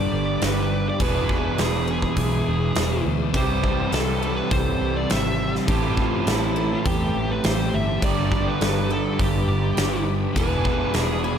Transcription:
0.00 0.98 G2 medium
0.00 0.98 D3 medium
0.00 0.99 G3 medium
0.00 0.99 B3 medium
0.00 0.99 D4 medium
0.00 0.96 G4 medium
0.00 0.99 G4 loud
0.00 0.12 A4 medium
0.00 0.45 D5 medium
0.00 0.98 D5 medium
0.00 3.31 B5 medium
0.00 3.31 D6 medium
0.12 0.36 G1 medium
0.41 0.89 G1 medium
0.41 1.00 G4 medium
0.41 snare loud
0.41 open hi-hat medium
0.46 0.89 B4 medium
0.89 1.02 D5 medium
0.99 1.47 E1 medium
0.99 3.32 E2 medium
0.99 3.32 B2 medium
0.99 3.33 E3 medium
0.99 3.33 B3 medium
0.99 3.33 D4 medium
0.99 1.58 G#4 medium
0.99 3.32 G#4 medium
0.99 3.33 G#4 loud
0.99 1.61 B4 medium
0.99 7.99 E5 medium
0.99 kick loud
0.99 open hi-hat medium
1.29 kick medium
1.58 2.06 E1 medium
1.58 1.89 G#4 medium
1.58 1.86 B4 medium
1.58 snare loud
1.58 open hi-hat medium
1.88 3.02 G#4 medium
1.88 2.46 B4 medium
2.02 kick medium
2.16 2.41 B1 medium
2.16 kick medium
2.16 open hi-hat medium
2.47 2.70 E1 medium
2.75 3.00 E1 medium
2.75 3.34 G#4 medium
2.75 snare loud
2.75 open hi-hat medium
3.05 3.29 D2 medium
3.33 3.82 C2 medium
3.33 5.66 C3 medium
3.33 5.66 E3 medium
3.33 5.68 G3 medium
3.33 5.67 C4 medium
3.33 5.67 E4 medium
3.33 10.33 G4 medium
3.33 3.92 G4 medium
3.33 5.69 G4 loud
3.33 3.93 C5 medium
3.33 7.98 A5 medium
3.33 7.98 C6 medium
3.33 kick loud
3.33 open hi-hat soft
3.64 kick medium
3.92 4.40 C2 medium
3.92 4.23 A4 medium
3.92 4.36 A4 medium
3.92 snare loud
3.92 open hi-hat soft
4.23 4.81 A4 medium
4.36 4.51 B4 medium
4.51 4.75 C2 medium
4.51 4.96 C5 medium
4.51 kick loud
4.51 open hi-hat soft
4.81 5.04 C2 medium
4.97 5.11 D5 medium
5.10 5.58 G#1 medium
5.10 5.68 G4 medium
5.10 5.54 E5 medium
5.10 snare loud
5.10 open hi-hat medium
5.55 snare soft
5.67 6.16 A1 loud
5.67 8.00 A2 medium
5.67 8.01 E3 medium
5.67 8.02 A3 medium
5.67 8.01 C4 medium
5.67 8.01 E4 medium
5.67 6.27 G4 medium
5.67 5.99 G4 medium
5.67 8.01 A4 loud
5.67 kick loud
5.67 open hi-hat soft
5.97 6.29 F4 medium
5.97 kick medium
6.27 6.75 A1 medium
6.27 6.69 E4 medium
6.27 6.55 A4 medium
6.27 snare loud
6.27 open hi-hat medium
6.56 7.15 A4 medium
6.74 6.87 F4 medium
6.85 7.09 E2 medium
6.85 7.31 G4 medium
6.85 kick loud
6.85 open hi-hat medium
7.15 7.38 A1 medium
7.31 7.45 B4 medium
7.44 7.68 A1 medium
7.44 8.01 G4 medium
7.44 7.75 C5 medium
7.44 snare loud
7.44 open hi-hat medium
7.73 7.97 G1 medium
7.73 8.03 E5 medium
8.02 8.50 G1 medium
8.02 10.36 G2 medium
8.02 10.36 D3 medium
8.02 10.36 G3 loud
8.02 10.37 B3 medium
8.02 10.37 D4 loud
8.02 8.61 G4 medium
8.02 10.37 G4 loud
8.02 10.34 D5 medium
8.02 8.48 D5 medium
8.02 11.38 B5 medium
8.02 10.34 D6 medium
8.02 kick loud
8.02 open hi-hat soft
8.32 kick medium
8.48 8.92 B4 medium
8.61 9.09 G1 medium
8.61 8.89 A4 medium
8.61 snare loud
8.61 open hi-hat medium
8.90 9.49 A4 medium
8.90 9.22 A4 medium
9.19 9.44 G1 medium
9.19 10.04 G4 medium
9.19 kick loud
9.19 open hi-hat medium
9.48 9.72 G1 medium
9.77 10.25 G1 medium
9.77 10.37 G4 medium
9.77 snare loud
9.77 open hi-hat medium
10.36 10.84 E1 medium
10.36 11.38 E2 medium
10.36 11.38 B2 medium
10.36 11.38 E3 medium
10.36 11.38 B3 medium
10.36 11.38 D4 loud
10.36 11.38 G#4 medium
10.36 10.94 G#4 medium
10.36 11.38 G#4 medium
10.36 10.96 B4 loud
10.36 11.38 E5 medium
10.36 11.38 D6 medium
10.36 kick medium
10.36 open hi-hat soft
10.65 kick medium
10.94 11.38 E1 medium
10.94 11.23 G#4 medium
10.94 11.23 B4 medium
10.94 snare loud
10.94 open hi-hat medium
11.24 11.38 G#4 medium
11.24 11.38 B4 medium

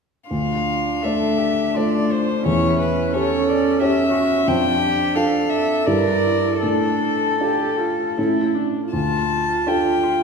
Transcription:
0.28 1.02 D2 soft
0.28 2.42 D4 soft
0.28 1.03 F4 soft
0.28 1.05 F5 medium
1.02 1.72 A3 soft
1.02 1.39 A4 soft
1.02 1.72 A4 soft
1.02 1.73 D5 soft
1.02 1.78 E5 medium
1.38 1.75 G4 soft
1.74 2.42 A3 soft
1.74 2.44 F4 soft
1.74 2.43 A4 soft
1.74 2.13 D5 medium
1.74 2.43 D5 soft
2.12 2.46 C5 medium
2.45 3.11 E2 soft
2.45 4.48 C#4 soft
2.45 3.11 E4 soft
2.45 2.79 C#5 medium
2.80 3.15 B4 medium
3.13 3.77 C#4 soft
3.13 3.77 G4 soft
3.13 3.81 A4 medium
3.13 3.50 C#5 medium
3.13 3.78 C#5 soft
3.48 3.82 D5 medium
3.80 4.44 C#4 soft
3.80 4.12 G4 soft
3.80 4.44 G4 soft
3.80 4.44 C#5 soft
3.80 4.50 E5 medium
4.10 4.46 F#4 soft
4.46 5.14 F2 soft
4.46 5.86 D4 soft
4.46 4.79 F4 soft
4.46 5.18 G5 medium
4.79 5.16 G4 medium
5.15 5.83 D4 soft
5.15 5.83 F4 soft
5.15 5.86 A4 soft
5.15 5.83 A4 soft
5.15 5.51 F5 medium
5.50 5.88 E5 medium
5.84 6.60 G2 soft
5.84 6.59 D4 soft
5.84 6.59 E4 soft
5.84 6.64 E4 soft
5.84 6.60 A#4 medium
5.84 6.59 A#4 soft
5.84 6.60 D5 medium
6.60 7.39 A2 soft
6.60 7.34 D4 soft
6.60 8.51 A4 soft
6.60 8.51 A4 medium
7.41 8.13 D4 soft
7.41 8.13 F4 soft
7.41 7.80 G4 soft
7.41 8.14 A4 soft
7.79 8.19 F4 soft
8.17 8.92 A2 soft
8.17 8.90 C#4 soft
8.17 8.56 E4 soft
8.17 8.90 E4 soft
8.17 8.90 A4 soft
8.55 8.92 D4 soft
8.91 9.65 D2 soft
8.91 9.68 F4 soft
8.91 10.23 F4 soft
8.91 9.69 A5 medium
9.66 10.23 D4 soft
9.66 10.23 F4 soft
9.66 10.04 G4 soft
9.66 10.23 A4 soft
9.66 10.23 G5 medium
10.03 10.23 F4 soft

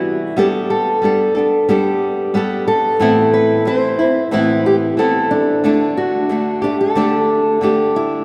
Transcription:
0.00 0.36 E3 medium
0.00 0.36 G3 medium
0.00 0.37 B3 medium
0.00 0.38 E4 medium
0.00 0.17 F#4 medium
0.36 1.01 G3 medium
0.36 1.03 B3 medium
0.36 1.03 D4 medium
0.36 0.46 G4 medium
0.36 1.05 A4 medium
0.70 1.65 A4 medium
1.02 1.35 G3 medium
1.02 1.36 B3 medium
1.02 1.35 D4 medium
1.02 1.34 A4 medium
1.35 1.68 B3 soft
1.35 1.69 D4 soft
1.35 1.68 A4 soft
1.69 2.33 G3 medium
1.69 2.35 B3 medium
1.69 2.35 D4 medium
1.69 2.31 G4 medium
1.69 2.37 A4 medium
2.34 3.00 G3 medium
2.34 3.00 B3 medium
2.34 3.01 D4 medium
2.34 3.02 A4 medium
2.34 2.67 B4 medium
2.68 3.33 A4 medium
3.00 3.66 A2 medium
3.00 3.64 E3 medium
3.00 3.67 B3 medium
3.00 3.66 C4 medium
3.00 3.67 E4 medium
3.34 3.67 B4 medium
3.65 3.99 E3 medium
3.65 4.00 C4 medium
3.65 3.98 E4 medium
3.65 4.34 C5 medium
3.99 4.31 C4 soft
3.99 4.32 E4 medium
4.31 4.98 A2 medium
4.31 4.96 E3 medium
4.31 4.98 B3 medium
4.31 4.97 C4 medium
4.31 4.99 E4 medium
4.31 4.66 B4 loud
4.66 4.75 G4 medium
4.97 5.63 E3 medium
4.97 5.65 B3 medium
4.97 5.64 C4 medium
4.97 5.65 E4 medium
4.97 5.32 A4 medium
5.31 5.93 D4 medium
5.64 6.28 D3 medium
5.64 6.29 A3 medium
5.64 6.31 D4 medium
5.97 6.64 F#4 medium
6.29 6.63 D3 medium
6.29 6.63 A3 medium
6.29 6.63 D4 medium
6.62 6.95 A3 soft
6.62 6.96 D4 medium
6.62 6.95 G4 medium
6.62 6.80 G4 medium
6.81 7.99 A4 medium
6.95 7.60 D3 medium
6.95 7.61 A3 medium
6.95 7.62 D4 medium
6.95 7.64 G4 medium
7.61 8.24 D3 medium
7.61 8.24 A3 medium
7.61 8.24 D4 medium
7.61 8.24 G4 medium
7.96 8.24 E4 medium

